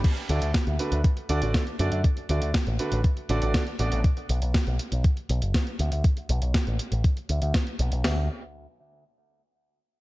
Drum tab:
CC |x---------------|----------------|----------------|----------------|
HH |xxxxxxxxxxxxxxxx|xxxxxxxxxxxxxxxx|xxxxxxxxxxxxxxxx|xxxxxxxxxxxxxxxx|
SD |----o-------o---|----o-------o---|----o-------o---|----o-------o---|
BD |o---o---o---o---|o---o---o---o---|o---o---o---o---|o---o---o---o---|

CC |----------------|
HH |o---------------|
SD |o---------------|
BD |----------------|